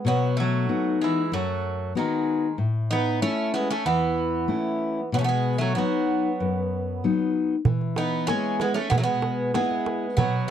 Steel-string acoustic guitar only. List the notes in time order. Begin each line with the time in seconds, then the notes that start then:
0.05 B2
0.69 B3 D#4 F#4
1.32 F#2
1.95 B3 D#4 F#4
2.58 A2
3.22 A3 C#4 E4
3.85 E2
4.48 A3 C#4 E4
5.12 B2
5.76 F#3 B3 D#4
6.40 F#2
7.04 F#3 B3 D#4
7.67 E3
8.29 B3 E4 G#4
8.93 B2
9.55 B3 E4 G#4
10.18 B2